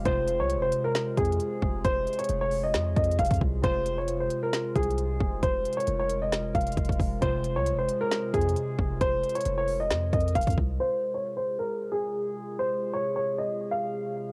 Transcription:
Already playing: C3 G#3
0.05 F1 C3 G#3 F4 G#4 C5, kick, closed hi-hat
0.28 closed hi-hat
0.40 C2 C#5
0.50 closed hi-hat
0.56 F1
0.62 C5
0.72 closed hi-hat
0.84 A#4
0.95 snare, closed hi-hat
1.17 F2 G#4, kick, closed hi-hat
1.25 closed hi-hat
1.32 closed hi-hat
1.40 closed hi-hat
1.62 F1, kick
1.85 F1 C5, kick, closed hi-hat
2.07 closed hi-hat
2.13 closed hi-hat
2.19 C#5, closed hi-hat
2.24 closed hi-hat
2.29 F1, closed hi-hat
2.41 C#5
2.51 open hi-hat
2.64 D#5
2.74 F2, snare, closed hi-hat
2.96 F2 D#5, kick, closed hi-hat
3.04 closed hi-hat
3.11 closed hi-hat
3.19 F1 F5, kick, closed hi-hat
3.25 closed hi-hat
3.31 F2, kick, closed hi-hat
3.34 closed hi-hat
3.36 closed hi-hat
3.41 C2, kick
3.62 F1 C3 G#3 F4 C5, kick, closed hi-hat
3.86 closed hi-hat
3.98 C#5
4.08 closed hi-hat
4.20 C5
4.30 closed hi-hat
4.43 A#4
4.53 snare, closed hi-hat
4.76 C2 G#4, kick, closed hi-hat
4.83 closed hi-hat
4.91 closed hi-hat
4.98 closed hi-hat
5.20 F1, kick
5.43 F1 A#4 C5, kick, closed hi-hat
5.65 closed hi-hat
5.73 closed hi-hat
5.77 C#5, closed hi-hat
5.87 F1, closed hi-hat
5.99 C#5
6.09 closed hi-hat
6.22 D#5
6.32 snare, closed hi-hat
6.55 F1 F5, kick, closed hi-hat
6.61 closed hi-hat
6.67 closed hi-hat
6.72 closed hi-hat
6.77 F1, kick, closed hi-hat
6.85 closed hi-hat
6.89 F1, kick, closed hi-hat
7.00 F1, kick, open hi-hat
7.21 F1 C3 G#3 F4 G#4 C5, kick, closed hi-hat
7.44 closed hi-hat
7.56 C2 C#5
7.66 closed hi-hat
7.73 F1
7.79 C5
7.89 closed hi-hat
8.01 A#4
8.11 snare, closed hi-hat
8.34 F2 G#4, kick, closed hi-hat
8.41 closed hi-hat
8.49 closed hi-hat
8.56 closed hi-hat
8.79 F1, kick
9.01 F1 A#4 C5, kick, closed hi-hat
9.23 closed hi-hat
9.29 closed hi-hat
9.35 C#5, closed hi-hat
9.41 closed hi-hat
9.45 F1, closed hi-hat
9.58 C#5
9.68 open hi-hat
9.80 D#5
9.90 F2, snare, closed hi-hat
10.13 F2 D#5, kick, closed hi-hat
10.20 closed hi-hat
10.28 closed hi-hat
10.35 F1 F5, kick, closed hi-hat
10.41 closed hi-hat
10.47 F2, kick, closed hi-hat
10.50 closed hi-hat
10.52 closed hi-hat
10.58 C2, kick
10.80 C3 G#3 F4 G#4 C5
11.14 C#5
11.37 C5
11.59 A#4
11.92 G#4
12.59 C5
12.93 C#5
13.16 C#5
13.38 D#5
13.71 F5

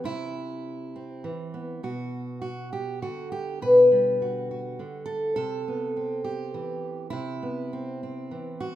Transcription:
0.04 C3 E4
0.96 C4
1.24 E3
1.54 B3
1.83 B2 F#4
2.42 F#4
2.73 G4
3.02 D3 F#4
3.32 G4
3.62 B2 B4
3.91 G3
4.22 F#4
4.51 F#4
4.79 D3
5.06 A4
5.36 C3 A4
5.68 B3
5.96 C4
6.24 G4
6.54 E3
7.10 C3 E4
7.43 B3
7.73 C4
8.03 C4
8.31 E3
8.60 F#4

